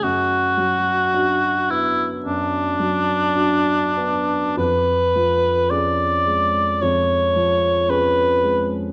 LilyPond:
<<
  \new Staff \with { instrumentName = "Cor anglais" } { \time 4/4 \key b \dorian \tempo 4 = 54 fis'4. e'8 d'2 | b'4 d''4 cis''4 b'8. r16 | }
  \new Staff \with { instrumentName = "Grand piano" } { \time 4/4 \key b \dorian fis,8 fis8 <d' fis'>8 b8 fis,8 fis8 <d' fis'>8 b8 | eis,8 eis8 <cis' gis'>8 gis8 eis,8 eis8 <cis' gis'>8 gis8 | }
>>